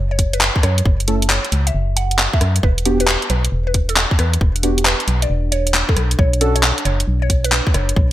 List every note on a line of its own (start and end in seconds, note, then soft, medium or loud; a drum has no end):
0.00 0.50 F#1 medium
0.00 0.53 E4 medium
0.00 2.63 F#4 medium
0.00 3.45 A4 medium
0.00 7.42 E5 medium
0.00 2.63 G#5 medium
0.00 0.53 B5 medium
0.11 0.18 C#5 medium
0.19 kick medium
0.19 open hi-hat loud
0.33 0.46 B4 medium
0.33 closed hi-hat medium
0.41 clap loud
0.56 kick loud
0.63 0.82 F#2 loud
0.63 0.80 C#5 medium
0.63 cross-stick medium
0.63 open hi-hat medium
0.78 closed hi-hat medium
0.86 1.39 F#1 loud
0.86 kick loud
1.00 closed hi-hat soft
1.08 1.21 A3 medium
1.08 1.21 C#4 medium
1.08 1.21 E4 medium
1.08 1.21 A4 medium
1.08 open hi-hat loud
1.22 closed hi-hat medium
1.30 1.47 C#5 medium
1.30 clap loud
1.45 closed hi-hat soft
1.52 1.71 C#2 medium
1.52 open hi-hat medium
1.67 1.79 E5 medium
1.67 closed hi-hat medium
1.75 2.28 F#1 medium
1.97 2.14 F#5 medium
1.97 open hi-hat loud
2.11 closed hi-hat medium
2.19 clap loud
2.33 2.46 E5 medium
2.33 kick loud
2.41 2.60 F#2 loud
2.41 cross-stick medium
2.41 open hi-hat medium
2.56 closed hi-hat medium
2.63 3.17 E1 loud
2.63 8.12 D4 medium
2.63 2.80 B4 loud
2.63 kick loud
2.75 5.96 G4 medium
2.75 closed hi-hat soft
2.85 3.04 B3 loud
2.85 3.04 D4 medium
2.85 3.04 F#4 medium
2.85 3.04 G4 loud
2.85 open hi-hat loud
3.00 3.12 B4 medium
3.00 closed hi-hat medium
3.08 7.34 F#5 medium
3.08 clap loud
3.22 closed hi-hat soft
3.30 3.49 B1 medium
3.30 3.47 B4 medium
3.30 open hi-hat medium
3.45 closed hi-hat medium
3.52 4.06 E1 medium
3.67 3.73 B4 medium
3.74 kick medium
3.74 open hi-hat loud
3.89 4.01 A4 medium
3.89 closed hi-hat medium
3.97 clap loud
4.11 kick loud
4.19 4.38 E2 loud
4.19 4.36 B4 medium
4.19 cross-stick medium
4.19 open hi-hat medium
4.33 closed hi-hat medium
4.41 4.95 E1 loud
4.41 kick loud
4.56 closed hi-hat soft
4.63 4.77 B3 medium
4.63 4.77 D4 medium
4.63 4.77 F#4 medium
4.63 4.77 G4 medium
4.63 open hi-hat loud
4.78 closed hi-hat medium
4.85 5.03 B4 medium
4.85 clap loud
5.00 closed hi-hat soft
5.08 5.26 B1 medium
5.08 open hi-hat medium
5.22 5.35 D5 medium
5.22 closed hi-hat medium
5.30 5.84 E1 medium
5.52 5.69 C#5 medium
5.52 open hi-hat loud
5.67 closed hi-hat medium
5.74 clap loud
5.89 6.01 A4 medium
5.89 kick loud
5.97 6.15 B1 loud
5.97 cross-stick medium
5.97 open hi-hat medium
6.11 closed hi-hat medium
6.19 6.72 B1 loud
6.19 6.36 C#5 medium
6.19 kick loud
6.33 closed hi-hat medium
6.39 6.59 C#4 medium
6.39 6.59 D4 medium
6.39 6.59 F#4 medium
6.39 6.59 A4 loud
6.39 8.12 B4 medium
6.39 open hi-hat loud
6.47 8.12 C#5 medium
6.55 6.68 C#5 medium
6.55 closed hi-hat medium
6.63 clap loud
6.78 closed hi-hat soft
6.85 7.04 F#1 medium
6.85 7.02 C#5 medium
6.85 open hi-hat medium
7.00 closed hi-hat medium
7.08 7.61 B1 medium
7.22 7.29 C#5 medium
7.30 kick medium
7.30 open hi-hat loud
7.44 7.57 B4 medium
7.44 closed hi-hat medium
7.52 clap loud
7.58 8.12 A5 medium
7.67 kick loud
7.74 7.93 F#1 loud
7.74 7.91 C#5 medium
7.74 cross-stick medium
7.74 open hi-hat medium
7.89 closed hi-hat medium
7.96 8.12 B1 loud
7.96 kick loud